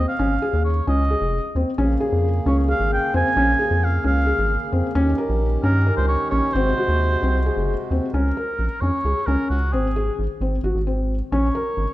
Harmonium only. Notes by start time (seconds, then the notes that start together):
1.79 C#3 A#3 G#4
4.95 D#3 C#4 G4
6.54 C3 G#3 F#4